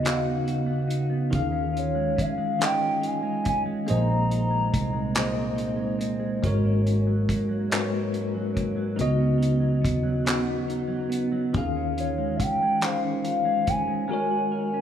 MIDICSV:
0, 0, Header, 1, 7, 480
1, 0, Start_track
1, 0, Tempo, 851064
1, 751, Time_signature, 6, 3, 24, 8
1, 8353, End_track
2, 0, Start_track
2, 0, Title_t, "Soft synth lead"
2, 0, Program_c, 0, 80
2, 0, Note_on_c, 0, 75, 97
2, 524, Note_off_c, 0, 75, 0
2, 1008, Note_on_c, 0, 73, 81
2, 1247, Note_on_c, 0, 77, 105
2, 1255, Note_off_c, 0, 73, 0
2, 1487, Note_on_c, 0, 79, 104
2, 1495, Note_off_c, 0, 77, 0
2, 1725, Note_on_c, 0, 80, 92
2, 1734, Note_off_c, 0, 79, 0
2, 1958, Note_off_c, 0, 80, 0
2, 1967, Note_on_c, 0, 80, 101
2, 2046, Note_off_c, 0, 80, 0
2, 2210, Note_on_c, 0, 82, 108
2, 3138, Note_off_c, 0, 82, 0
2, 6768, Note_on_c, 0, 73, 79
2, 6973, Note_on_c, 0, 78, 81
2, 6981, Note_off_c, 0, 73, 0
2, 7010, Note_on_c, 0, 79, 105
2, 7018, Note_off_c, 0, 78, 0
2, 7238, Note_off_c, 0, 79, 0
2, 7242, Note_on_c, 0, 77, 105
2, 7718, Note_on_c, 0, 80, 113
2, 7726, Note_off_c, 0, 77, 0
2, 7952, Note_off_c, 0, 80, 0
2, 7955, Note_on_c, 0, 80, 111
2, 8353, Note_off_c, 0, 80, 0
2, 8353, End_track
3, 0, Start_track
3, 0, Title_t, "Tine electric piano"
3, 0, Program_c, 1, 4
3, 0, Control_c, 1, 64, 127
3, 0, Note_on_c, 1, 49, 78
3, 0, Note_on_c, 1, 59, 75
3, 0, Note_on_c, 1, 66, 71
3, 0, Note_on_c, 1, 75, 84
3, 18, Note_off_c, 1, 49, 0
3, 18, Note_on_c, 1, 49, 76
3, 28, Note_off_c, 1, 59, 0
3, 28, Note_on_c, 1, 59, 63
3, 35, Note_off_c, 1, 66, 0
3, 35, Note_on_c, 1, 66, 68
3, 42, Note_on_c, 1, 77, 65
3, 73, Note_off_c, 1, 77, 0
3, 77, Note_on_c, 1, 78, 80
3, 583, Note_off_c, 1, 49, 0
3, 588, Note_off_c, 1, 59, 0
3, 592, Note_off_c, 1, 66, 0
3, 613, Note_off_c, 1, 78, 0
3, 739, Note_on_c, 1, 51, 95
3, 747, Note_on_c, 1, 61, 84
3, 757, Note_on_c, 1, 68, 84
3, 758, Control_c, 1, 64, 0
3, 762, Note_off_c, 1, 75, 0
3, 762, Note_on_c, 1, 77, 109
3, 843, Control_c, 1, 64, 127
3, 1304, Note_off_c, 1, 51, 0
3, 1308, Note_off_c, 1, 61, 0
3, 1313, Note_off_c, 1, 68, 0
3, 1315, Note_off_c, 1, 77, 0
3, 1463, Note_on_c, 1, 51, 65
3, 1468, Note_on_c, 1, 61, 55
3, 1476, Note_on_c, 1, 68, 54
3, 1485, Note_on_c, 1, 75, 69
3, 2026, Note_off_c, 1, 51, 0
3, 2028, Note_off_c, 1, 61, 0
3, 2032, Note_off_c, 1, 68, 0
3, 2037, Note_off_c, 1, 75, 0
3, 2180, Note_on_c, 1, 58, 82
3, 2188, Note_on_c, 1, 68, 76
3, 2197, Control_c, 1, 64, 0
3, 2197, Note_on_c, 1, 72, 70
3, 2201, Note_on_c, 1, 75, 86
3, 2290, Control_c, 1, 64, 127
3, 2744, Note_off_c, 1, 58, 0
3, 2748, Note_off_c, 1, 68, 0
3, 2753, Note_off_c, 1, 72, 0
3, 2755, Note_off_c, 1, 75, 0
3, 2907, Note_on_c, 1, 58, 64
3, 2914, Note_on_c, 1, 68, 68
3, 2923, Note_on_c, 1, 72, 65
3, 2929, Note_on_c, 1, 75, 79
3, 3468, Note_off_c, 1, 58, 0
3, 3471, Note_off_c, 1, 68, 0
3, 3476, Note_off_c, 1, 72, 0
3, 3479, Note_off_c, 1, 75, 0
3, 3624, Note_on_c, 1, 56, 99
3, 3633, Note_on_c, 1, 66, 80
3, 3638, Control_c, 1, 64, 0
3, 3640, Note_on_c, 1, 70, 81
3, 3647, Note_on_c, 1, 73, 102
3, 3723, Control_c, 1, 64, 127
3, 4186, Note_off_c, 1, 56, 0
3, 4191, Note_off_c, 1, 66, 0
3, 4194, Note_off_c, 1, 70, 0
3, 4198, Note_off_c, 1, 73, 0
3, 4343, Note_on_c, 1, 56, 70
3, 4352, Note_on_c, 1, 66, 64
3, 4359, Note_on_c, 1, 70, 69
3, 4367, Note_on_c, 1, 71, 61
3, 4395, Note_off_c, 1, 71, 0
3, 4402, Note_on_c, 1, 73, 78
3, 4906, Note_off_c, 1, 56, 0
3, 4910, Note_off_c, 1, 66, 0
3, 4914, Note_off_c, 1, 70, 0
3, 4935, Note_off_c, 1, 73, 0
3, 5063, Note_on_c, 1, 49, 94
3, 5069, Note_on_c, 1, 59, 83
3, 5078, Control_c, 1, 64, 0
3, 5079, Note_on_c, 1, 66, 86
3, 5083, Note_on_c, 1, 75, 104
3, 5191, Control_c, 1, 64, 127
3, 5626, Note_off_c, 1, 49, 0
3, 5629, Note_off_c, 1, 59, 0
3, 5634, Note_off_c, 1, 66, 0
3, 5636, Note_off_c, 1, 75, 0
3, 5788, Note_on_c, 1, 49, 71
3, 5794, Note_on_c, 1, 59, 69
3, 5802, Note_on_c, 1, 66, 73
3, 5812, Note_on_c, 1, 78, 87
3, 6348, Note_off_c, 1, 49, 0
3, 6351, Note_off_c, 1, 59, 0
3, 6355, Note_off_c, 1, 66, 0
3, 6360, Note_off_c, 1, 78, 0
3, 6508, Note_on_c, 1, 51, 98
3, 6517, Control_c, 1, 64, 0
3, 6517, Note_on_c, 1, 61, 87
3, 6522, Note_on_c, 1, 68, 88
3, 6531, Note_on_c, 1, 77, 98
3, 6628, Control_c, 1, 64, 127
3, 7068, Note_off_c, 1, 51, 0
3, 7073, Note_off_c, 1, 61, 0
3, 7075, Note_off_c, 1, 68, 0
3, 7080, Note_off_c, 1, 77, 0
3, 7230, Note_on_c, 1, 51, 63
3, 7241, Note_on_c, 1, 61, 64
3, 7249, Note_on_c, 1, 68, 55
3, 7253, Note_on_c, 1, 72, 62
3, 7789, Note_off_c, 1, 51, 0
3, 7795, Note_off_c, 1, 61, 0
3, 7799, Note_off_c, 1, 68, 0
3, 7801, Note_off_c, 1, 72, 0
3, 7948, Note_on_c, 1, 56, 80
3, 7956, Note_on_c, 1, 66, 74
3, 7957, Control_c, 1, 64, 0
3, 7962, Note_on_c, 1, 70, 82
3, 7972, Note_on_c, 1, 73, 82
3, 8056, Control_c, 1, 64, 127
3, 8353, Note_off_c, 1, 56, 0
3, 8353, Note_off_c, 1, 66, 0
3, 8353, Note_off_c, 1, 70, 0
3, 8353, Note_off_c, 1, 73, 0
3, 8353, End_track
4, 0, Start_track
4, 0, Title_t, "Clean electric guitar"
4, 0, Program_c, 2, 27
4, 0, Note_on_c, 2, 59, 60
4, 0, Note_on_c, 2, 63, 58
4, 16, Note_on_c, 2, 49, 71
4, 21, Note_on_c, 2, 66, 59
4, 135, Note_off_c, 2, 63, 0
4, 138, Note_on_c, 2, 63, 61
4, 248, Note_off_c, 2, 66, 0
4, 255, Note_on_c, 2, 66, 65
4, 367, Note_off_c, 2, 59, 0
4, 374, Note_on_c, 2, 59, 65
4, 492, Note_off_c, 2, 63, 0
4, 494, Note_on_c, 2, 63, 57
4, 612, Note_off_c, 2, 59, 0
4, 619, Note_on_c, 2, 59, 63
4, 734, Note_off_c, 2, 66, 0
4, 736, Note_on_c, 2, 51, 84
4, 736, Note_on_c, 2, 65, 72
4, 791, Note_off_c, 2, 49, 0
4, 793, Note_off_c, 2, 59, 0
4, 853, Note_off_c, 2, 63, 0
4, 855, Note_on_c, 2, 61, 55
4, 975, Note_off_c, 2, 65, 0
4, 977, Note_on_c, 2, 65, 62
4, 1098, Note_on_c, 2, 56, 60
4, 1214, Note_off_c, 2, 61, 0
4, 1221, Note_on_c, 2, 61, 61
4, 1338, Note_off_c, 2, 56, 0
4, 1341, Note_on_c, 2, 56, 68
4, 1457, Note_off_c, 2, 51, 0
4, 1459, Note_on_c, 2, 51, 75
4, 1460, Note_off_c, 2, 65, 0
4, 1462, Note_on_c, 2, 65, 60
4, 1579, Note_off_c, 2, 61, 0
4, 1585, Note_on_c, 2, 61, 62
4, 1697, Note_off_c, 2, 65, 0
4, 1700, Note_on_c, 2, 65, 68
4, 1816, Note_off_c, 2, 56, 0
4, 1818, Note_on_c, 2, 56, 68
4, 1934, Note_off_c, 2, 61, 0
4, 1941, Note_on_c, 2, 61, 60
4, 2061, Note_off_c, 2, 56, 0
4, 2063, Note_on_c, 2, 56, 62
4, 2185, Note_on_c, 2, 46, 88
4, 2186, Note_off_c, 2, 65, 0
4, 2188, Note_on_c, 2, 63, 64
4, 2234, Note_off_c, 2, 61, 0
4, 2304, Note_on_c, 2, 60, 60
4, 2427, Note_off_c, 2, 63, 0
4, 2429, Note_on_c, 2, 63, 61
4, 2538, Note_off_c, 2, 56, 0
4, 2541, Note_on_c, 2, 56, 54
4, 2659, Note_off_c, 2, 60, 0
4, 2665, Note_on_c, 2, 60, 55
4, 2779, Note_off_c, 2, 56, 0
4, 2781, Note_on_c, 2, 56, 63
4, 2894, Note_off_c, 2, 46, 0
4, 2900, Note_on_c, 2, 46, 74
4, 2901, Note_off_c, 2, 63, 0
4, 2904, Note_on_c, 2, 63, 61
4, 3009, Note_off_c, 2, 60, 0
4, 3016, Note_on_c, 2, 60, 64
4, 3131, Note_off_c, 2, 63, 0
4, 3133, Note_on_c, 2, 63, 62
4, 3247, Note_off_c, 2, 56, 0
4, 3250, Note_on_c, 2, 56, 62
4, 3370, Note_off_c, 2, 60, 0
4, 3376, Note_on_c, 2, 60, 58
4, 3433, Note_off_c, 2, 51, 0
4, 3492, Note_off_c, 2, 56, 0
4, 3494, Note_on_c, 2, 56, 58
4, 3623, Note_off_c, 2, 46, 0
4, 3626, Note_off_c, 2, 63, 0
4, 3626, Note_on_c, 2, 44, 82
4, 3629, Note_on_c, 2, 61, 69
4, 3671, Note_off_c, 2, 60, 0
4, 3745, Note_on_c, 2, 58, 59
4, 3762, Note_off_c, 2, 56, 0
4, 3868, Note_off_c, 2, 61, 0
4, 3871, Note_on_c, 2, 61, 56
4, 3988, Note_on_c, 2, 54, 57
4, 4108, Note_off_c, 2, 58, 0
4, 4115, Note_on_c, 2, 58, 51
4, 4222, Note_off_c, 2, 54, 0
4, 4225, Note_on_c, 2, 54, 60
4, 4343, Note_off_c, 2, 44, 0
4, 4350, Note_on_c, 2, 44, 75
4, 4354, Note_off_c, 2, 61, 0
4, 4356, Note_on_c, 2, 61, 61
4, 4462, Note_off_c, 2, 58, 0
4, 4469, Note_on_c, 2, 58, 58
4, 4579, Note_off_c, 2, 61, 0
4, 4581, Note_on_c, 2, 61, 68
4, 4703, Note_off_c, 2, 54, 0
4, 4705, Note_on_c, 2, 54, 61
4, 4811, Note_off_c, 2, 58, 0
4, 4818, Note_on_c, 2, 58, 56
4, 4939, Note_off_c, 2, 54, 0
4, 4941, Note_on_c, 2, 54, 62
4, 5053, Note_off_c, 2, 61, 0
4, 5053, Note_on_c, 2, 49, 82
4, 5055, Note_on_c, 2, 63, 69
4, 5112, Note_off_c, 2, 58, 0
4, 5118, Note_off_c, 2, 44, 0
4, 5175, Note_on_c, 2, 59, 51
4, 5288, Note_off_c, 2, 63, 0
4, 5291, Note_on_c, 2, 63, 58
4, 5411, Note_off_c, 2, 54, 0
4, 5413, Note_on_c, 2, 54, 55
4, 5529, Note_off_c, 2, 59, 0
4, 5536, Note_on_c, 2, 59, 55
4, 5652, Note_off_c, 2, 54, 0
4, 5659, Note_on_c, 2, 54, 63
4, 5771, Note_off_c, 2, 49, 0
4, 5778, Note_on_c, 2, 49, 74
4, 5780, Note_off_c, 2, 63, 0
4, 5783, Note_on_c, 2, 63, 60
4, 5894, Note_off_c, 2, 59, 0
4, 5900, Note_on_c, 2, 59, 60
4, 6022, Note_off_c, 2, 63, 0
4, 6025, Note_on_c, 2, 63, 63
4, 6127, Note_off_c, 2, 54, 0
4, 6134, Note_on_c, 2, 54, 64
4, 6251, Note_off_c, 2, 59, 0
4, 6258, Note_on_c, 2, 59, 58
4, 6376, Note_off_c, 2, 54, 0
4, 6383, Note_on_c, 2, 54, 59
4, 6501, Note_off_c, 2, 49, 0
4, 6503, Note_on_c, 2, 51, 84
4, 6507, Note_off_c, 2, 63, 0
4, 6509, Note_on_c, 2, 65, 71
4, 6552, Note_off_c, 2, 59, 0
4, 6555, Note_off_c, 2, 54, 0
4, 6634, Note_on_c, 2, 61, 56
4, 6746, Note_off_c, 2, 65, 0
4, 6753, Note_on_c, 2, 65, 64
4, 6869, Note_on_c, 2, 56, 62
4, 6990, Note_off_c, 2, 61, 0
4, 6993, Note_on_c, 2, 61, 56
4, 7117, Note_off_c, 2, 56, 0
4, 7119, Note_on_c, 2, 56, 66
4, 7228, Note_off_c, 2, 65, 0
4, 7230, Note_off_c, 2, 51, 0
4, 7232, Note_on_c, 2, 51, 75
4, 7235, Note_on_c, 2, 65, 60
4, 7348, Note_off_c, 2, 61, 0
4, 7350, Note_on_c, 2, 61, 61
4, 7464, Note_off_c, 2, 65, 0
4, 7471, Note_on_c, 2, 65, 62
4, 7584, Note_off_c, 2, 56, 0
4, 7587, Note_on_c, 2, 56, 69
4, 7703, Note_off_c, 2, 61, 0
4, 7705, Note_on_c, 2, 61, 58
4, 7824, Note_off_c, 2, 56, 0
4, 7826, Note_on_c, 2, 56, 66
4, 7938, Note_off_c, 2, 56, 0
4, 7941, Note_on_c, 2, 56, 79
4, 7946, Note_on_c, 2, 70, 71
4, 7999, Note_off_c, 2, 65, 0
4, 8068, Note_on_c, 2, 66, 56
4, 8185, Note_off_c, 2, 70, 0
4, 8188, Note_on_c, 2, 70, 63
4, 8308, Note_off_c, 2, 61, 0
4, 8310, Note_on_c, 2, 61, 53
4, 8327, Note_off_c, 2, 51, 0
4, 8353, Note_off_c, 2, 56, 0
4, 8353, Note_off_c, 2, 61, 0
4, 8353, Note_off_c, 2, 66, 0
4, 8353, Note_off_c, 2, 70, 0
4, 8353, End_track
5, 0, Start_track
5, 0, Title_t, "Fingered electric bass"
5, 0, Program_c, 3, 33
5, 0, Note_on_c, 3, 39, 86
5, 730, Note_off_c, 3, 39, 0
5, 754, Note_on_c, 3, 39, 119
5, 1210, Note_off_c, 3, 39, 0
5, 2203, Note_on_c, 3, 34, 115
5, 2654, Note_off_c, 3, 34, 0
5, 2676, Note_on_c, 3, 36, 93
5, 3637, Note_on_c, 3, 32, 102
5, 3646, Note_off_c, 3, 36, 0
5, 4091, Note_off_c, 3, 32, 0
5, 5078, Note_on_c, 3, 37, 109
5, 5560, Note_off_c, 3, 37, 0
5, 5560, Note_on_c, 3, 39, 81
5, 6492, Note_off_c, 3, 39, 0
5, 6518, Note_on_c, 3, 39, 112
5, 6972, Note_off_c, 3, 39, 0
5, 8353, End_track
6, 0, Start_track
6, 0, Title_t, "Muted fingered electric bass strokes"
6, 1237, Note_on_c, 9, 29, 47
6, 1294, Note_off_c, 9, 29, 0
6, 4117, Note_on_c, 9, 29, 45
6, 4174, Note_off_c, 9, 29, 0
6, 6997, Note_on_c, 9, 29, 46
6, 7053, Note_off_c, 9, 29, 0
6, 8353, End_track
7, 0, Start_track
7, 0, Title_t, "Drums"
7, 29, Note_on_c, 9, 42, 72
7, 38, Note_on_c, 9, 39, 99
7, 85, Note_off_c, 9, 42, 0
7, 94, Note_off_c, 9, 39, 0
7, 269, Note_on_c, 9, 42, 51
7, 325, Note_off_c, 9, 42, 0
7, 510, Note_on_c, 9, 42, 66
7, 566, Note_off_c, 9, 42, 0
7, 748, Note_on_c, 9, 42, 63
7, 750, Note_on_c, 9, 36, 112
7, 804, Note_off_c, 9, 42, 0
7, 806, Note_off_c, 9, 36, 0
7, 997, Note_on_c, 9, 42, 59
7, 1054, Note_off_c, 9, 42, 0
7, 1232, Note_on_c, 9, 36, 81
7, 1236, Note_on_c, 9, 42, 85
7, 1288, Note_off_c, 9, 36, 0
7, 1292, Note_off_c, 9, 42, 0
7, 1472, Note_on_c, 9, 42, 65
7, 1481, Note_on_c, 9, 39, 101
7, 1528, Note_off_c, 9, 42, 0
7, 1537, Note_off_c, 9, 39, 0
7, 1711, Note_on_c, 9, 42, 49
7, 1767, Note_off_c, 9, 42, 0
7, 1947, Note_on_c, 9, 42, 68
7, 1952, Note_on_c, 9, 36, 77
7, 2004, Note_off_c, 9, 42, 0
7, 2008, Note_off_c, 9, 36, 0
7, 2188, Note_on_c, 9, 42, 62
7, 2244, Note_off_c, 9, 42, 0
7, 2433, Note_on_c, 9, 42, 54
7, 2489, Note_off_c, 9, 42, 0
7, 2671, Note_on_c, 9, 36, 86
7, 2672, Note_on_c, 9, 42, 84
7, 2728, Note_off_c, 9, 36, 0
7, 2729, Note_off_c, 9, 42, 0
7, 2904, Note_on_c, 9, 42, 69
7, 2913, Note_on_c, 9, 39, 105
7, 2960, Note_off_c, 9, 42, 0
7, 2970, Note_off_c, 9, 39, 0
7, 3148, Note_on_c, 9, 42, 48
7, 3204, Note_off_c, 9, 42, 0
7, 3388, Note_on_c, 9, 42, 66
7, 3445, Note_off_c, 9, 42, 0
7, 3630, Note_on_c, 9, 36, 114
7, 3632, Note_on_c, 9, 42, 60
7, 3686, Note_off_c, 9, 36, 0
7, 3688, Note_off_c, 9, 42, 0
7, 3873, Note_on_c, 9, 42, 53
7, 3929, Note_off_c, 9, 42, 0
7, 4111, Note_on_c, 9, 36, 89
7, 4115, Note_on_c, 9, 42, 74
7, 4168, Note_off_c, 9, 36, 0
7, 4171, Note_off_c, 9, 42, 0
7, 4351, Note_on_c, 9, 42, 80
7, 4361, Note_on_c, 9, 39, 94
7, 4408, Note_off_c, 9, 42, 0
7, 4417, Note_off_c, 9, 39, 0
7, 4591, Note_on_c, 9, 42, 49
7, 4647, Note_off_c, 9, 42, 0
7, 4832, Note_on_c, 9, 36, 76
7, 4832, Note_on_c, 9, 42, 60
7, 4888, Note_off_c, 9, 36, 0
7, 4889, Note_off_c, 9, 42, 0
7, 5070, Note_on_c, 9, 42, 66
7, 5126, Note_off_c, 9, 42, 0
7, 5316, Note_on_c, 9, 42, 57
7, 5372, Note_off_c, 9, 42, 0
7, 5553, Note_on_c, 9, 36, 82
7, 5557, Note_on_c, 9, 42, 85
7, 5609, Note_off_c, 9, 36, 0
7, 5613, Note_off_c, 9, 42, 0
7, 5789, Note_on_c, 9, 42, 69
7, 5798, Note_on_c, 9, 39, 104
7, 5845, Note_off_c, 9, 42, 0
7, 5854, Note_off_c, 9, 39, 0
7, 6034, Note_on_c, 9, 42, 44
7, 6090, Note_off_c, 9, 42, 0
7, 6271, Note_on_c, 9, 42, 67
7, 6328, Note_off_c, 9, 42, 0
7, 6509, Note_on_c, 9, 42, 63
7, 6511, Note_on_c, 9, 36, 121
7, 6565, Note_off_c, 9, 42, 0
7, 6568, Note_off_c, 9, 36, 0
7, 6756, Note_on_c, 9, 42, 58
7, 6812, Note_off_c, 9, 42, 0
7, 6992, Note_on_c, 9, 36, 90
7, 6994, Note_on_c, 9, 42, 89
7, 7048, Note_off_c, 9, 36, 0
7, 7050, Note_off_c, 9, 42, 0
7, 7227, Note_on_c, 9, 42, 76
7, 7236, Note_on_c, 9, 39, 116
7, 7284, Note_off_c, 9, 42, 0
7, 7293, Note_off_c, 9, 39, 0
7, 7471, Note_on_c, 9, 42, 54
7, 7527, Note_off_c, 9, 42, 0
7, 7711, Note_on_c, 9, 42, 62
7, 7713, Note_on_c, 9, 36, 85
7, 7767, Note_off_c, 9, 42, 0
7, 7770, Note_off_c, 9, 36, 0
7, 8353, End_track
0, 0, End_of_file